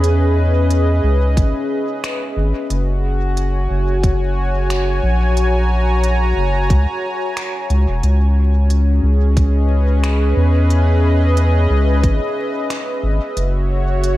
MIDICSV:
0, 0, Header, 1, 4, 480
1, 0, Start_track
1, 0, Tempo, 666667
1, 25, Time_signature, 4, 2, 24, 8
1, 10203, End_track
2, 0, Start_track
2, 0, Title_t, "Analog synth pad"
2, 0, Program_c, 0, 89
2, 0, Note_on_c, 0, 61, 78
2, 0, Note_on_c, 0, 68, 83
2, 0, Note_on_c, 0, 71, 88
2, 0, Note_on_c, 0, 75, 92
2, 0, Note_on_c, 0, 76, 85
2, 1943, Note_on_c, 0, 66, 74
2, 1944, Note_off_c, 0, 75, 0
2, 1945, Note_off_c, 0, 71, 0
2, 2202, Note_on_c, 0, 80, 95
2, 2359, Note_on_c, 0, 73, 88
2, 3491, Note_off_c, 0, 61, 0
2, 3492, Note_off_c, 0, 68, 0
2, 3678, Note_on_c, 0, 82, 94
2, 5781, Note_on_c, 0, 61, 83
2, 5784, Note_off_c, 0, 76, 0
2, 6246, Note_on_c, 0, 68, 80
2, 6522, Note_off_c, 0, 82, 0
2, 6619, Note_on_c, 0, 75, 89
2, 6741, Note_on_c, 0, 71, 89
2, 7121, Note_off_c, 0, 80, 0
2, 7268, Note_off_c, 0, 73, 0
2, 7331, Note_off_c, 0, 66, 0
2, 7516, Note_on_c, 0, 76, 82
2, 9624, Note_off_c, 0, 75, 0
2, 9625, Note_off_c, 0, 71, 0
2, 9625, Note_on_c, 0, 66, 74
2, 9704, Note_on_c, 0, 73, 90
2, 10203, Note_off_c, 0, 61, 0
2, 10203, Note_off_c, 0, 66, 0
2, 10203, Note_off_c, 0, 68, 0
2, 10203, Note_off_c, 0, 73, 0
2, 10203, Note_off_c, 0, 76, 0
2, 10203, End_track
3, 0, Start_track
3, 0, Title_t, "Analog synth bass"
3, 0, Program_c, 1, 38
3, 0, Note_on_c, 1, 40, 86
3, 726, Note_off_c, 1, 40, 0
3, 747, Note_on_c, 1, 37, 79
3, 986, Note_on_c, 1, 32, 83
3, 997, Note_off_c, 1, 37, 0
3, 1103, Note_off_c, 1, 32, 0
3, 1705, Note_on_c, 1, 32, 87
3, 1822, Note_off_c, 1, 32, 0
3, 1946, Note_on_c, 1, 30, 97
3, 2645, Note_off_c, 1, 30, 0
3, 2667, Note_on_c, 1, 30, 80
3, 3605, Note_off_c, 1, 30, 0
3, 3624, Note_on_c, 1, 34, 89
3, 4564, Note_off_c, 1, 34, 0
3, 4584, Note_on_c, 1, 30, 80
3, 4824, Note_on_c, 1, 37, 85
3, 4835, Note_off_c, 1, 30, 0
3, 4942, Note_off_c, 1, 37, 0
3, 5546, Note_on_c, 1, 37, 98
3, 5663, Note_off_c, 1, 37, 0
3, 5677, Note_on_c, 1, 28, 91
3, 5772, Note_off_c, 1, 28, 0
3, 5784, Note_on_c, 1, 37, 99
3, 6484, Note_off_c, 1, 37, 0
3, 6504, Note_on_c, 1, 37, 79
3, 7444, Note_off_c, 1, 37, 0
3, 7466, Note_on_c, 1, 40, 86
3, 8405, Note_off_c, 1, 40, 0
3, 8426, Note_on_c, 1, 37, 80
3, 8665, Note_on_c, 1, 32, 82
3, 8676, Note_off_c, 1, 37, 0
3, 8782, Note_off_c, 1, 32, 0
3, 9385, Note_on_c, 1, 32, 89
3, 9502, Note_off_c, 1, 32, 0
3, 9626, Note_on_c, 1, 30, 98
3, 10203, Note_off_c, 1, 30, 0
3, 10203, End_track
4, 0, Start_track
4, 0, Title_t, "Drums"
4, 27, Note_on_c, 9, 42, 54
4, 99, Note_off_c, 9, 42, 0
4, 508, Note_on_c, 9, 42, 54
4, 580, Note_off_c, 9, 42, 0
4, 986, Note_on_c, 9, 36, 106
4, 988, Note_on_c, 9, 42, 54
4, 1058, Note_off_c, 9, 36, 0
4, 1060, Note_off_c, 9, 42, 0
4, 1468, Note_on_c, 9, 26, 94
4, 1468, Note_on_c, 9, 42, 53
4, 1540, Note_off_c, 9, 26, 0
4, 1540, Note_off_c, 9, 42, 0
4, 1947, Note_on_c, 9, 42, 52
4, 2019, Note_off_c, 9, 42, 0
4, 2427, Note_on_c, 9, 42, 52
4, 2499, Note_off_c, 9, 42, 0
4, 2905, Note_on_c, 9, 36, 105
4, 2907, Note_on_c, 9, 42, 53
4, 2977, Note_off_c, 9, 36, 0
4, 2979, Note_off_c, 9, 42, 0
4, 3386, Note_on_c, 9, 26, 96
4, 3386, Note_on_c, 9, 42, 54
4, 3458, Note_off_c, 9, 26, 0
4, 3458, Note_off_c, 9, 42, 0
4, 3866, Note_on_c, 9, 42, 52
4, 3938, Note_off_c, 9, 42, 0
4, 4346, Note_on_c, 9, 42, 51
4, 4418, Note_off_c, 9, 42, 0
4, 4824, Note_on_c, 9, 36, 108
4, 4825, Note_on_c, 9, 42, 52
4, 4896, Note_off_c, 9, 36, 0
4, 4897, Note_off_c, 9, 42, 0
4, 5305, Note_on_c, 9, 26, 95
4, 5305, Note_on_c, 9, 42, 51
4, 5377, Note_off_c, 9, 26, 0
4, 5377, Note_off_c, 9, 42, 0
4, 5545, Note_on_c, 9, 42, 28
4, 5617, Note_off_c, 9, 42, 0
4, 5785, Note_on_c, 9, 42, 51
4, 5857, Note_off_c, 9, 42, 0
4, 6265, Note_on_c, 9, 42, 49
4, 6337, Note_off_c, 9, 42, 0
4, 6745, Note_on_c, 9, 36, 106
4, 6745, Note_on_c, 9, 42, 50
4, 6817, Note_off_c, 9, 36, 0
4, 6817, Note_off_c, 9, 42, 0
4, 7226, Note_on_c, 9, 26, 94
4, 7226, Note_on_c, 9, 42, 49
4, 7298, Note_off_c, 9, 26, 0
4, 7298, Note_off_c, 9, 42, 0
4, 7707, Note_on_c, 9, 42, 50
4, 7779, Note_off_c, 9, 42, 0
4, 8187, Note_on_c, 9, 42, 52
4, 8259, Note_off_c, 9, 42, 0
4, 8665, Note_on_c, 9, 36, 100
4, 8666, Note_on_c, 9, 42, 49
4, 8737, Note_off_c, 9, 36, 0
4, 8738, Note_off_c, 9, 42, 0
4, 9146, Note_on_c, 9, 26, 89
4, 9146, Note_on_c, 9, 42, 50
4, 9218, Note_off_c, 9, 26, 0
4, 9218, Note_off_c, 9, 42, 0
4, 9626, Note_on_c, 9, 42, 52
4, 9698, Note_off_c, 9, 42, 0
4, 10105, Note_on_c, 9, 42, 51
4, 10177, Note_off_c, 9, 42, 0
4, 10203, End_track
0, 0, End_of_file